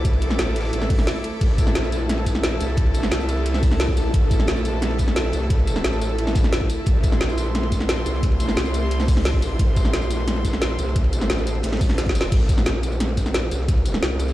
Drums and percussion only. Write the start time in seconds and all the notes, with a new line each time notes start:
0.05 kick, closed hi-hat, ride
0.13 ride
0.22 closed hi-hat, ride
0.30 snare
0.38 snare, closed hi-hat, ride
0.56 snare, closed hi-hat, ride
0.60 snare, ride
0.65 snare, ride
0.68 snare, ride
0.73 closed hi-hat, ride
0.82 snare
0.90 kick, snare, closed hi-hat, open hi-hat
0.99 snare
1.07 snare, closed hi-hat, ride
1.15 snare
1.24 closed hi-hat, ride
1.41 kick, closed hi-hat, crash, ride
1.58 kick, closed hi-hat, ride, tambourine
1.67 snare
1.75 snare, closed hi-hat, ride
1.84 tambourine
1.92 closed hi-hat, ride, tambourine
2.09 snare, closed hi-hat, ride
2.18 ride
2.26 kick, snare, closed hi-hat, ride, tambourine
2.35 snare
2.43 snare, closed hi-hat, ride
2.60 closed hi-hat, ride, tambourine
2.69 snare
2.77 kick, closed hi-hat, ride
2.86 ride
2.94 closed hi-hat, ride, tambourine
3.03 snare, tambourine
3.11 snare, closed hi-hat, ride
3.20 tambourine
3.29 closed hi-hat, ride, tambourine
3.37 ride
3.46 closed hi-hat, ride
3.54 snare, tambourine
3.63 kick, snare, closed hi-hat, open hi-hat, tambourine
3.71 snare
3.80 snare, closed hi-hat, ride
3.88 kick, snare
3.97 closed hi-hat, ride, tambourine
4.14 kick, closed hi-hat, ride
4.31 kick, closed hi-hat, ride, tambourine
4.39 snare
4.47 snare, closed hi-hat, ride
4.57 tambourine
4.65 closed hi-hat, ride, tambourine
4.82 snare, closed hi-hat, ride
4.91 ride
4.98 kick, snare, closed hi-hat, ride, tambourine
5.08 snare
5.16 snare, closed hi-hat, ride
5.33 closed hi-hat, ride, tambourine
5.42 snare
5.50 kick, closed hi-hat, ride
5.59 ride
5.67 closed hi-hat, ride, tambourine
5.76 snare, tambourine
5.84 snare, closed hi-hat, ride
5.93 tambourine
6.01 closed hi-hat, ride, tambourine
6.09 ride
6.18 closed hi-hat, ride
6.27 snare, tambourine
6.35 kick, snare, closed hi-hat, ride, tambourine
6.44 snare
6.52 snare, closed hi-hat, ride
6.61 kick, snare
6.69 closed hi-hat, ride, tambourine
6.86 kick, closed hi-hat, ride
7.03 kick, closed hi-hat, ride, tambourine
7.12 snare
7.20 snare, closed hi-hat, ride
7.29 tambourine
7.37 closed hi-hat, ride, tambourine
7.55 snare, closed hi-hat, ride
7.63 ride
7.72 kick, snare, closed hi-hat, ride, tambourine
7.80 snare
7.89 snare, closed hi-hat, ride
8.06 closed hi-hat, ride, tambourine
8.14 snare
8.23 kick, closed hi-hat, ride
8.32 ride
8.40 closed hi-hat, ride, tambourine
8.49 snare, tambourine
8.56 snare, closed hi-hat, ride
8.66 tambourine
8.74 closed hi-hat, ride, tambourine
8.82 ride
8.91 closed hi-hat, ride
9.00 snare, tambourine
9.08 kick, snare, closed hi-hat, open hi-hat, tambourine
9.17 snare
9.25 snare, closed hi-hat, ride
9.34 kick, snare
9.42 closed hi-hat, ride, tambourine
9.59 kick, closed hi-hat, ride
9.76 kick, closed hi-hat, ride, tambourine
9.85 snare
9.93 snare, closed hi-hat, ride
10.02 tambourine
10.10 closed hi-hat, ride, tambourine
10.28 snare, closed hi-hat, ride
10.36 ride
10.45 kick, snare, closed hi-hat, ride, tambourine
10.53 snare
10.61 snare, closed hi-hat, ride
10.78 closed hi-hat, ride, tambourine
10.87 snare
10.96 kick, closed hi-hat, ride
11.04 ride
11.13 closed hi-hat, ride, tambourine
11.21 snare, tambourine
11.30 snare, closed hi-hat, ride
11.38 tambourine
11.47 closed hi-hat, ride, tambourine
11.55 ride
11.63 snare, closed hi-hat, ride
11.68 snare, ride
11.72 snare, ride
11.77 snare, ride
11.81 kick, snare, closed hi-hat, open hi-hat, tambourine
11.89 snare
11.98 snare, closed hi-hat, ride
12.06 kick, snare
12.09 snare
12.15 closed hi-hat, ride, tambourine
12.21 snare
12.32 kick, closed hi-hat, crash, ride
12.49 kick, closed hi-hat, ride, tambourine
12.58 snare
12.66 snare, closed hi-hat, ride
12.83 closed hi-hat, ride, tambourine
12.92 tambourine
13.00 snare, closed hi-hat, ride
13.09 ride
13.17 kick, snare, closed hi-hat, ride, tambourine
13.26 snare, tambourine
13.34 snare, closed hi-hat, ride
13.51 closed hi-hat, ride, tambourine
13.61 snare
13.68 kick, closed hi-hat, ride
13.77 ride
13.85 closed hi-hat, ride, tambourine
13.94 snare
14.03 snare, closed hi-hat, ride
14.19 closed hi-hat, ride, tambourine
14.28 ride, tambourine